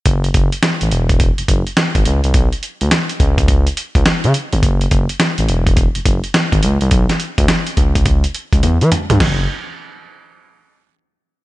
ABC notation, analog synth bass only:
X:1
M:4/4
L:1/16
Q:"Swing 16ths" 1/4=105
K:Emix
V:1 name="Analog synth bass" clef=bass
F,,,2 F,,, z2 A,,, E,,,3 F,,, F,,, z2 G,,, C,, ^B,,, | B,,, z2 D,, z2 C,,4 z C,, z C, z =G,,, | F,,,2 F,,, z2 A,,, E,,,3 F,,, F,,, z2 G,,, C,, ^B,,, | B,,, z2 D,, z2 C,,4 z C,, E,, E, z =G,, |
F,,,2 z12 z2 |]